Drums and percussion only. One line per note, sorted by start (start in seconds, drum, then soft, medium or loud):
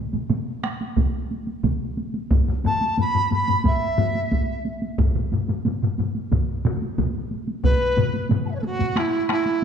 0.13 taiko mid medium
0.13 taiko high medium
0.29 taiko mid medium
0.29 taiko high medium
0.63 taiko rim medium
0.63 taiko high medium
0.81 taiko high medium
0.97 taiko medium
0.97 taiko mid medium
0.97 taiko high medium
1.31 taiko high medium
1.47 taiko high medium
1.64 taiko medium
1.64 taiko mid medium
1.64 taiko high medium
1.97 taiko high medium
2.14 taiko high medium
2.31 taiko medium
2.31 taiko low-mid medium
2.31 taiko high medium
2.48 taiko low-mid medium
2.64 taiko low-mid medium
2.64 taiko high medium
2.81 taiko high medium
2.97 taiko low-mid medium
2.97 taiko high medium
3.15 taiko low-mid medium
3.31 taiko low-mid medium
3.31 taiko high medium
3.48 taiko low-mid medium
3.48 taiko high medium
3.64 taiko medium
3.64 taiko low-mid medium
3.64 taiko high medium
3.98 taiko low-mid loud
3.98 taiko high medium
4.15 taiko high medium
4.32 taiko medium
4.32 taiko high medium
4.65 taiko high medium
4.82 taiko high medium
4.98 taiko medium
4.98 taiko low-mid medium
4.98 taiko mid medium
4.98 taiko high medium
5.15 taiko low-mid medium
5.15 taiko mid medium
5.32 taiko low-mid medium
5.32 taiko mid medium
5.32 taiko high soft
5.48 taiko low-mid medium
5.48 taiko mid medium
5.48 taiko high medium
5.65 taiko low-mid medium
5.65 taiko mid medium
5.65 taiko high medium
5.83 taiko low-mid medium
5.83 taiko mid medium
5.98 taiko low-mid medium
5.98 taiko mid medium
5.98 taiko high medium
6.15 taiko high soft
6.32 taiko medium
6.32 taiko low-mid loud
6.32 taiko mid loud
6.32 taiko high medium
6.65 taiko low-mid loud
6.65 taiko mid loud
6.65 taiko high medium
6.82 taiko high medium
6.98 taiko medium
6.98 taiko low-mid medium
6.98 taiko mid medium
6.98 taiko high medium
7.31 taiko high soft
7.48 taiko high medium
7.64 taiko medium
7.64 taiko low-mid medium
7.64 taiko mid medium
7.64 taiko high medium
7.97 taiko low-mid loud
7.97 taiko mid loud
7.97 taiko high medium
8.13 taiko high medium
8.29 taiko low-mid medium
8.29 taiko mid loud
8.29 taiko high medium
8.63 taiko high medium
8.79 taiko low-mid medium
8.79 taiko mid medium
8.79 taiko high medium
8.96 taiko rim medium
8.96 taiko high medium
9.29 taiko rim medium
9.29 taiko high medium
9.46 taiko high medium